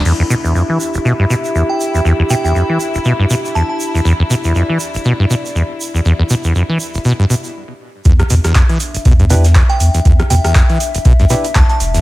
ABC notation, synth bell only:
X:1
M:4/4
L:1/16
Q:"Swing 16ths" 1/4=120
K:Em
V:1 name="Synth bell"
z12 z g z2 | z2 g g z8 a a z2 | z16 | z16 |
z12 z g z2 | z2 g g z8 a a z2 |]